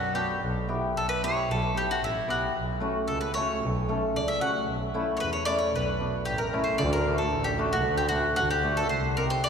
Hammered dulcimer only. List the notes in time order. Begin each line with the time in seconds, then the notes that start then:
0.14 B3 D4 F#4
0.68 B3 E4 G4
1.23 B3 E4 G4
1.74 B3 E4 G4
2.28 B3 E4 G4
2.80 A3 C#4 F#4
3.36 A3 C#4 F#4
3.88 A3 C#4 A4
4.40 A3 C#4 F#4
4.94 A3 C#4 E4
5.46 A3 C#4 E4
6.00 B3 D4 F#4
6.53 A3 C#4 E4
7.06 A3 D4 F#4
7.58 A3 D4 F#4
8.11 A3 D4 F#4
8.63 A3 D4 F#4
9.17 C4 D#4 G4